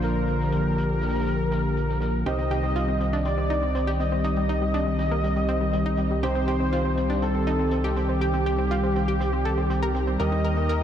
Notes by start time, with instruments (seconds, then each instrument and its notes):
Already playing: sub bass A#1, felt piano A#2 D4 F4 A#4, analog synth pad D3 F3 A#3 F4
0.02 supersaw synth A#4, snare, closed hi-hat
0.28 analog synth pad G4, closed hi-hat
0.40 snare
0.52 closed hi-hat
0.78 closed hi-hat
1.02 snare, closed hi-hat
1.09 snare, closed hi-hat
1.14 snare, closed hi-hat
1.20 snare, closed hi-hat
1.27 closed hi-hat
1.52 snare, closed hi-hat
1.77 closed hi-hat
1.89 snare
2.01 snare, closed hi-hat
2.26 sub bass C2, felt piano C3 D#4 G4 C5, analog synth pad D#3 G3 C4 G4, synth pluck G4, supersaw synth D#5, closed hi-hat
2.39 synth pluck C4, closed hi-hat
2.51 synth pluck G4, closed hi-hat
2.63 synth pluck C4
2.76 synth pluck F4, closed hi-hat
2.88 synth pluck C4
3.01 synth pluck C4, closed hi-hat
3.12 synth pluck D4, snare
3.25 synth pluck C4, supersaw synth D5, closed hi-hat
3.38 synth pluck C4
3.50 synth pluck D#4, closed hi-hat
3.63 synth pluck C4
3.75 synth pluck C4, closed hi-hat
3.87 synth pluck G4, snare
4.00 synth pluck C4, supersaw synth D#5, closed hi-hat
4.12 synth pluck C4
4.24 synth pluck D#4, closed hi-hat
4.36 synth pluck G3, closed hi-hat
4.49 synth pluck D#4, closed hi-hat
4.62 synth pluck G3
4.74 synth pluck D4, closed hi-hat
4.87 synth pluck G3
4.99 synth pluck G3, snare, closed hi-hat
5.11 synth pluck A#3
5.24 synth pluck G3, closed hi-hat
5.36 synth pluck G3, closed hi-hat
5.49 synth pluck C4, closed hi-hat
5.61 synth pluck G3
5.73 synth pluck G3, closed hi-hat
5.86 synth pluck D#4
5.97 synth pluck G3, closed hi-hat
6.11 synth pluck G3
6.23 felt piano C3 D#4 G4 C5, synth pluck G4, supersaw synth C5, closed hi-hat
6.35 synth pluck C4, closed hi-hat
6.47 synth pluck G4, closed hi-hat
6.60 synth pluck C4
6.73 synth pluck F4, closed hi-hat
6.85 synth pluck C4
6.97 synth pluck C4, closed hi-hat
7.10 synth pluck D4, snare
7.22 synth pluck C4, supersaw synth A4, closed hi-hat
7.35 synth pluck C4
7.47 synth pluck D#4, closed hi-hat
7.59 synth pluck C4
7.71 synth pluck C4, closed hi-hat
7.84 synth pluck G4, snare
7.97 synth pluck C4, supersaw synth G4, closed hi-hat
8.09 synth pluck C4
8.21 synth pluck G4, closed hi-hat
8.34 synth pluck C4, closed hi-hat
8.46 synth pluck G4, closed hi-hat
8.59 synth pluck C4
8.71 synth pluck F4, closed hi-hat
8.83 synth pluck C4
8.96 synth pluck C4, closed hi-hat
9.08 synth pluck G4
9.21 synth pluck C4, closed hi-hat
9.33 synth pluck C4
9.45 synth pluck A4, closed hi-hat
9.58 synth pluck C4
9.70 synth pluck C4, closed hi-hat
9.82 synth pluck A#4
9.95 synth pluck C4, closed hi-hat
10.07 synth pluck C4
10.19 sub bass D#2, felt piano D#3 D#4 G4 A#4, analog synth pad D#3 A#3 G4, synth pluck A#4, supersaw synth D#5, closed hi-hat
10.32 synth pluck D#4, closed hi-hat
10.44 synth pluck A#4, closed hi-hat
10.57 synth pluck D#4
10.69 synth pluck A#4, closed hi-hat